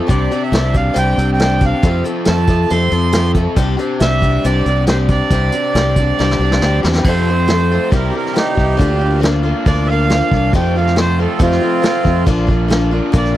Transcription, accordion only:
0.09 0.43 D5 medium
0.43 0.76 E5 medium
0.76 0.98 F5 medium
0.98 1.31 G5 loud
1.33 1.65 G5 loud
1.66 2.04 F5 medium
2.28 2.72 A5 medium
2.71 3.32 C6 loud
4.01 4.46 E5 loud
4.44 4.85 D5 loud
4.88 4.98 C5 medium
5.11 6.80 D5 loud
7.02 7.05 B4 medium
7.07 7.91 C5 loud
7.95 8.15 A#4 medium
8.16 8.36 A#4 medium
8.36 8.77 D#4 medium
8.36 9.21 G4 loud
9.66 9.88 D5 loud
9.87 9.89 E5 medium
9.87 10.53 F5 loud
10.56 10.76 G5 medium
10.76 10.97 F5 medium
11.00 11.20 C5 loud
11.21 11.41 A4 medium
11.41 12.24 C4 loud
11.41 12.25 F4 loud
13.17 13.36 D5 loud

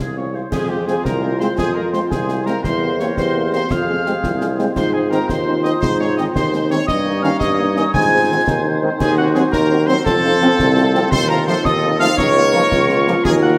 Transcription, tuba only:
0.00 0.43 C2 soft
0.52 0.96 F2 medium
1.04 1.44 C2 medium
1.57 2.02 F2 medium
2.11 2.55 C2 medium
2.64 3.09 E2 medium
3.18 3.62 E2 medium
3.70 4.15 F2 medium
4.23 4.67 C2 medium
4.76 5.20 G#2 medium
5.30 5.74 D#2 medium
5.82 6.27 G#2 medium
6.34 6.79 D#2 medium
6.88 7.32 G2 medium
7.41 7.85 G2 medium
7.94 8.38 G#2 medium
8.47 8.86 D#2 medium
8.99 9.44 D#2 medium
9.53 9.97 D#2 medium
10.05 10.50 F2 medium
10.59 11.03 C2 medium
11.12 11.56 D#2 medium
11.65 12.09 D#2 medium
12.18 12.63 C#2 medium
12.71 13.16 C#2 medium
13.25 13.58 D#2 loud

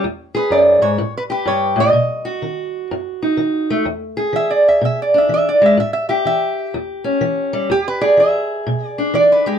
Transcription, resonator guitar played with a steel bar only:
0.37 0.53 B4 medium
0.52 0.82 D5 medium
0.82 1.13 C#5 medium
1.17 1.22 B4 medium
1.32 1.48 B4 medium
1.47 1.79 C#5 medium
1.80 3.35 D#5 loud
4.36 4.51 E5 medium
4.51 4.66 D5 medium
4.68 4.83 E5 medium
4.85 4.99 E5 loud
5.02 5.16 D5 medium
5.18 5.32 E5 medium
5.34 5.48 E5 medium
5.49 5.63 D5 medium
5.66 5.79 E5 medium
5.80 5.92 E5 medium
5.93 6.08 E5 loud
6.09 6.25 E5 medium
6.27 6.73 E5 medium
7.71 7.86 G4 medium
7.88 8.03 B4 loud
8.01 8.17 D5 medium
8.20 8.87 E5 medium
8.87 9.13 D5 medium
9.15 9.30 D5 medium
9.32 9.47 B4 medium
9.47 9.59 G4 medium

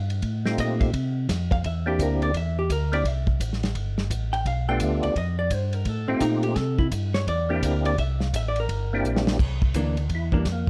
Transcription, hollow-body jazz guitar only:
0.60 0.80 D#5 medium
0.80 1.16 E5 loud
1.52 1.64 F5 loud
1.66 1.87 E5 loud
1.88 2.00 G4 medium
2.03 2.23 A#4 medium
2.23 2.35 D5 loud
2.37 2.58 E5 loud
2.59 2.70 G4 medium
2.72 2.93 A#4 medium
2.94 3.07 D5 medium
3.07 3.41 E5 medium
4.33 4.46 G5 loud
4.47 4.68 F5 medium
4.69 4.83 G5 loud
4.83 5.04 E5 loud
5.04 5.16 D5 loud
5.18 5.38 D#5 loud
5.39 5.54 D5 loud
5.54 5.74 C5 medium
5.74 5.89 A#4 medium
5.89 6.10 A4 medium
6.08 6.21 C4 medium
6.22 6.44 D#4 medium
6.44 6.57 G4 medium
6.57 6.79 A4 loud
6.79 6.87 E4 loud
7.14 7.27 C#5 loud
7.29 7.50 D5 loud
7.50 7.63 G4 medium
7.63 7.85 A#4 medium
7.86 7.98 D5 loud
7.99 8.21 E5 loud
8.21 8.33 F5 loud
8.36 8.46 E5 medium
8.48 8.58 D5 medium
8.60 9.09 A#4 medium
9.76 9.95 E3 medium
9.76 9.96 A#3 medium
9.76 9.96 D4 medium
10.33 10.44 E3 medium
10.33 10.45 A#3 medium
10.33 10.45 D4 medium

